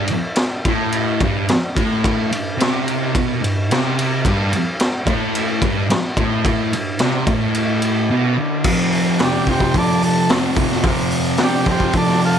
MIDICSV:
0, 0, Header, 1, 5, 480
1, 0, Start_track
1, 0, Tempo, 550964
1, 1777, Time_signature, 4, 2, 24, 8
1, 10793, End_track
2, 0, Start_track
2, 0, Title_t, "Transistor combo organ"
2, 0, Program_c, 0, 18
2, 8003, Note_on_c, 0, 66, 58
2, 8030, Note_off_c, 0, 66, 0
2, 8033, Note_on_c, 0, 62, 75
2, 8042, Note_on_c, 0, 67, 83
2, 8250, Note_off_c, 0, 62, 0
2, 8264, Note_off_c, 0, 67, 0
2, 8285, Note_on_c, 0, 72, 93
2, 8287, Note_on_c, 0, 67, 86
2, 8497, Note_off_c, 0, 67, 0
2, 8504, Note_off_c, 0, 72, 0
2, 8518, Note_on_c, 0, 69, 86
2, 8526, Note_on_c, 0, 74, 96
2, 8731, Note_off_c, 0, 69, 0
2, 8744, Note_off_c, 0, 74, 0
2, 8758, Note_on_c, 0, 69, 101
2, 8980, Note_off_c, 0, 69, 0
2, 9919, Note_on_c, 0, 66, 70
2, 9945, Note_off_c, 0, 66, 0
2, 9958, Note_on_c, 0, 67, 98
2, 9961, Note_on_c, 0, 62, 90
2, 10169, Note_off_c, 0, 62, 0
2, 10177, Note_off_c, 0, 67, 0
2, 10200, Note_on_c, 0, 67, 87
2, 10208, Note_on_c, 0, 72, 102
2, 10409, Note_off_c, 0, 67, 0
2, 10422, Note_off_c, 0, 72, 0
2, 10430, Note_on_c, 0, 69, 80
2, 10443, Note_on_c, 0, 74, 95
2, 10643, Note_off_c, 0, 69, 0
2, 10659, Note_off_c, 0, 74, 0
2, 10677, Note_on_c, 0, 65, 89
2, 10685, Note_on_c, 0, 69, 103
2, 10793, Note_off_c, 0, 65, 0
2, 10793, Note_off_c, 0, 69, 0
2, 10793, End_track
3, 0, Start_track
3, 0, Title_t, "Distorted electric guitar"
3, 0, Program_c, 1, 30
3, 581, Note_on_c, 1, 45, 106
3, 1051, Note_off_c, 1, 45, 0
3, 1074, Note_on_c, 1, 43, 113
3, 1293, Note_off_c, 1, 43, 0
3, 1533, Note_on_c, 1, 45, 101
3, 2010, Note_off_c, 1, 45, 0
3, 2020, Note_on_c, 1, 43, 72
3, 2212, Note_off_c, 1, 43, 0
3, 2251, Note_on_c, 1, 48, 103
3, 2730, Note_off_c, 1, 48, 0
3, 2749, Note_on_c, 1, 47, 105
3, 2977, Note_on_c, 1, 43, 85
3, 2979, Note_off_c, 1, 47, 0
3, 3173, Note_off_c, 1, 43, 0
3, 3234, Note_on_c, 1, 48, 108
3, 3703, Note_off_c, 1, 48, 0
3, 3706, Note_on_c, 1, 43, 105
3, 3939, Note_off_c, 1, 43, 0
3, 4420, Note_on_c, 1, 45, 114
3, 4896, Note_off_c, 1, 45, 0
3, 4903, Note_on_c, 1, 43, 108
3, 5130, Note_off_c, 1, 43, 0
3, 5379, Note_on_c, 1, 45, 101
3, 5855, Note_off_c, 1, 45, 0
3, 5866, Note_on_c, 1, 43, 72
3, 6058, Note_off_c, 1, 43, 0
3, 6109, Note_on_c, 1, 48, 96
3, 6331, Note_off_c, 1, 48, 0
3, 6334, Note_on_c, 1, 45, 103
3, 7051, Note_off_c, 1, 45, 0
3, 7062, Note_on_c, 1, 47, 94
3, 7296, Note_off_c, 1, 47, 0
3, 7306, Note_on_c, 1, 50, 98
3, 7537, Note_off_c, 1, 50, 0
3, 7537, Note_on_c, 1, 41, 98
3, 7544, Note_on_c, 1, 48, 99
3, 7552, Note_on_c, 1, 53, 110
3, 8014, Note_off_c, 1, 48, 0
3, 8015, Note_off_c, 1, 41, 0
3, 8018, Note_on_c, 1, 41, 86
3, 8025, Note_on_c, 1, 48, 97
3, 8032, Note_off_c, 1, 53, 0
3, 8035, Note_on_c, 1, 53, 100
3, 8243, Note_off_c, 1, 41, 0
3, 8247, Note_off_c, 1, 48, 0
3, 8247, Note_on_c, 1, 41, 85
3, 8258, Note_on_c, 1, 48, 93
3, 8261, Note_off_c, 1, 53, 0
3, 8264, Note_on_c, 1, 53, 90
3, 8482, Note_off_c, 1, 41, 0
3, 8491, Note_off_c, 1, 48, 0
3, 8493, Note_on_c, 1, 41, 92
3, 8497, Note_off_c, 1, 53, 0
3, 8502, Note_on_c, 1, 48, 95
3, 8508, Note_on_c, 1, 53, 99
3, 8959, Note_off_c, 1, 41, 0
3, 8968, Note_off_c, 1, 48, 0
3, 8969, Note_on_c, 1, 41, 85
3, 8976, Note_off_c, 1, 53, 0
3, 8978, Note_on_c, 1, 48, 92
3, 8986, Note_on_c, 1, 53, 91
3, 9182, Note_off_c, 1, 41, 0
3, 9192, Note_on_c, 1, 41, 96
3, 9197, Note_off_c, 1, 48, 0
3, 9200, Note_off_c, 1, 53, 0
3, 9208, Note_on_c, 1, 48, 97
3, 9210, Note_on_c, 1, 53, 87
3, 9437, Note_off_c, 1, 41, 0
3, 9445, Note_off_c, 1, 48, 0
3, 9447, Note_on_c, 1, 41, 92
3, 9453, Note_off_c, 1, 53, 0
3, 9455, Note_on_c, 1, 48, 98
3, 9463, Note_on_c, 1, 53, 101
3, 9916, Note_off_c, 1, 41, 0
3, 9919, Note_off_c, 1, 48, 0
3, 9926, Note_on_c, 1, 41, 92
3, 9928, Note_off_c, 1, 53, 0
3, 9930, Note_on_c, 1, 48, 87
3, 9939, Note_on_c, 1, 53, 96
3, 10157, Note_off_c, 1, 41, 0
3, 10167, Note_on_c, 1, 41, 93
3, 10168, Note_off_c, 1, 48, 0
3, 10174, Note_off_c, 1, 53, 0
3, 10179, Note_on_c, 1, 48, 99
3, 10184, Note_on_c, 1, 53, 95
3, 10397, Note_off_c, 1, 41, 0
3, 10404, Note_off_c, 1, 48, 0
3, 10406, Note_off_c, 1, 53, 0
3, 10407, Note_on_c, 1, 41, 98
3, 10414, Note_on_c, 1, 48, 105
3, 10417, Note_on_c, 1, 53, 103
3, 10793, Note_off_c, 1, 41, 0
3, 10793, Note_off_c, 1, 48, 0
3, 10793, Note_off_c, 1, 53, 0
3, 10793, End_track
4, 0, Start_track
4, 0, Title_t, "Muted distorted electric guitar strokes"
4, 95, Note_on_c, 9, 29, 58
4, 183, Note_off_c, 9, 29, 0
4, 1303, Note_on_c, 9, 29, 56
4, 1390, Note_off_c, 9, 29, 0
4, 3958, Note_on_c, 9, 29, 58
4, 4045, Note_off_c, 9, 29, 0
4, 5140, Note_on_c, 9, 29, 61
4, 5227, Note_off_c, 9, 29, 0
4, 10793, End_track
5, 0, Start_track
5, 0, Title_t, "Drums"
5, 65, Note_on_c, 9, 51, 79
5, 152, Note_off_c, 9, 51, 0
5, 310, Note_on_c, 9, 51, 102
5, 320, Note_on_c, 9, 38, 120
5, 397, Note_off_c, 9, 51, 0
5, 407, Note_off_c, 9, 38, 0
5, 566, Note_on_c, 9, 51, 70
5, 567, Note_on_c, 9, 36, 114
5, 653, Note_off_c, 9, 51, 0
5, 654, Note_off_c, 9, 36, 0
5, 805, Note_on_c, 9, 51, 96
5, 892, Note_off_c, 9, 51, 0
5, 1050, Note_on_c, 9, 36, 113
5, 1051, Note_on_c, 9, 51, 70
5, 1137, Note_off_c, 9, 36, 0
5, 1138, Note_off_c, 9, 51, 0
5, 1294, Note_on_c, 9, 51, 102
5, 1304, Note_on_c, 9, 38, 118
5, 1381, Note_off_c, 9, 51, 0
5, 1391, Note_off_c, 9, 38, 0
5, 1538, Note_on_c, 9, 36, 113
5, 1545, Note_on_c, 9, 51, 79
5, 1625, Note_off_c, 9, 36, 0
5, 1632, Note_off_c, 9, 51, 0
5, 1780, Note_on_c, 9, 36, 100
5, 1787, Note_on_c, 9, 51, 100
5, 1867, Note_off_c, 9, 36, 0
5, 1874, Note_off_c, 9, 51, 0
5, 2025, Note_on_c, 9, 51, 79
5, 2112, Note_off_c, 9, 51, 0
5, 2268, Note_on_c, 9, 51, 112
5, 2278, Note_on_c, 9, 38, 119
5, 2355, Note_off_c, 9, 51, 0
5, 2365, Note_off_c, 9, 38, 0
5, 2506, Note_on_c, 9, 51, 79
5, 2593, Note_off_c, 9, 51, 0
5, 2743, Note_on_c, 9, 36, 117
5, 2746, Note_on_c, 9, 51, 106
5, 2830, Note_off_c, 9, 36, 0
5, 2833, Note_off_c, 9, 51, 0
5, 2997, Note_on_c, 9, 51, 78
5, 3085, Note_off_c, 9, 51, 0
5, 3232, Note_on_c, 9, 51, 114
5, 3243, Note_on_c, 9, 38, 113
5, 3319, Note_off_c, 9, 51, 0
5, 3330, Note_off_c, 9, 38, 0
5, 3473, Note_on_c, 9, 51, 90
5, 3560, Note_off_c, 9, 51, 0
5, 3701, Note_on_c, 9, 36, 105
5, 3706, Note_on_c, 9, 51, 105
5, 3789, Note_off_c, 9, 36, 0
5, 3793, Note_off_c, 9, 51, 0
5, 3944, Note_on_c, 9, 51, 79
5, 4031, Note_off_c, 9, 51, 0
5, 4178, Note_on_c, 9, 51, 108
5, 4189, Note_on_c, 9, 38, 111
5, 4265, Note_off_c, 9, 51, 0
5, 4276, Note_off_c, 9, 38, 0
5, 4415, Note_on_c, 9, 36, 107
5, 4420, Note_on_c, 9, 51, 71
5, 4502, Note_off_c, 9, 36, 0
5, 4508, Note_off_c, 9, 51, 0
5, 4660, Note_on_c, 9, 51, 106
5, 4747, Note_off_c, 9, 51, 0
5, 4894, Note_on_c, 9, 36, 101
5, 4896, Note_on_c, 9, 51, 75
5, 4981, Note_off_c, 9, 36, 0
5, 4983, Note_off_c, 9, 51, 0
5, 5141, Note_on_c, 9, 51, 103
5, 5151, Note_on_c, 9, 38, 123
5, 5228, Note_off_c, 9, 51, 0
5, 5239, Note_off_c, 9, 38, 0
5, 5375, Note_on_c, 9, 36, 112
5, 5378, Note_on_c, 9, 51, 74
5, 5462, Note_off_c, 9, 36, 0
5, 5465, Note_off_c, 9, 51, 0
5, 5616, Note_on_c, 9, 36, 110
5, 5623, Note_on_c, 9, 51, 102
5, 5704, Note_off_c, 9, 36, 0
5, 5710, Note_off_c, 9, 51, 0
5, 5863, Note_on_c, 9, 51, 77
5, 5950, Note_off_c, 9, 51, 0
5, 6089, Note_on_c, 9, 51, 100
5, 6099, Note_on_c, 9, 38, 114
5, 6176, Note_off_c, 9, 51, 0
5, 6186, Note_off_c, 9, 38, 0
5, 6332, Note_on_c, 9, 36, 116
5, 6332, Note_on_c, 9, 51, 74
5, 6419, Note_off_c, 9, 36, 0
5, 6419, Note_off_c, 9, 51, 0
5, 6573, Note_on_c, 9, 51, 102
5, 6660, Note_off_c, 9, 51, 0
5, 6811, Note_on_c, 9, 51, 81
5, 6898, Note_off_c, 9, 51, 0
5, 7528, Note_on_c, 9, 49, 127
5, 7532, Note_on_c, 9, 36, 121
5, 7616, Note_off_c, 9, 49, 0
5, 7619, Note_off_c, 9, 36, 0
5, 7772, Note_on_c, 9, 46, 72
5, 7859, Note_off_c, 9, 46, 0
5, 8007, Note_on_c, 9, 46, 97
5, 8017, Note_on_c, 9, 38, 122
5, 8094, Note_off_c, 9, 46, 0
5, 8104, Note_off_c, 9, 38, 0
5, 8249, Note_on_c, 9, 46, 71
5, 8250, Note_on_c, 9, 36, 92
5, 8337, Note_off_c, 9, 36, 0
5, 8337, Note_off_c, 9, 46, 0
5, 8368, Note_on_c, 9, 36, 84
5, 8455, Note_off_c, 9, 36, 0
5, 8487, Note_on_c, 9, 46, 90
5, 8489, Note_on_c, 9, 36, 97
5, 8574, Note_off_c, 9, 46, 0
5, 8576, Note_off_c, 9, 36, 0
5, 8732, Note_on_c, 9, 46, 66
5, 8819, Note_off_c, 9, 46, 0
5, 8965, Note_on_c, 9, 46, 93
5, 8976, Note_on_c, 9, 38, 126
5, 9052, Note_off_c, 9, 46, 0
5, 9063, Note_off_c, 9, 38, 0
5, 9205, Note_on_c, 9, 36, 96
5, 9205, Note_on_c, 9, 46, 68
5, 9292, Note_off_c, 9, 36, 0
5, 9292, Note_off_c, 9, 46, 0
5, 9333, Note_on_c, 9, 38, 36
5, 9420, Note_off_c, 9, 38, 0
5, 9439, Note_on_c, 9, 46, 89
5, 9442, Note_on_c, 9, 36, 116
5, 9526, Note_off_c, 9, 46, 0
5, 9529, Note_off_c, 9, 36, 0
5, 9674, Note_on_c, 9, 46, 66
5, 9762, Note_off_c, 9, 46, 0
5, 9908, Note_on_c, 9, 46, 90
5, 9918, Note_on_c, 9, 38, 113
5, 9995, Note_off_c, 9, 46, 0
5, 10005, Note_off_c, 9, 38, 0
5, 10161, Note_on_c, 9, 36, 94
5, 10162, Note_on_c, 9, 46, 70
5, 10248, Note_off_c, 9, 36, 0
5, 10249, Note_off_c, 9, 46, 0
5, 10281, Note_on_c, 9, 36, 81
5, 10368, Note_off_c, 9, 36, 0
5, 10393, Note_on_c, 9, 46, 95
5, 10399, Note_on_c, 9, 36, 98
5, 10480, Note_off_c, 9, 46, 0
5, 10486, Note_off_c, 9, 36, 0
5, 10531, Note_on_c, 9, 38, 37
5, 10618, Note_off_c, 9, 38, 0
5, 10639, Note_on_c, 9, 46, 71
5, 10726, Note_off_c, 9, 46, 0
5, 10793, End_track
0, 0, End_of_file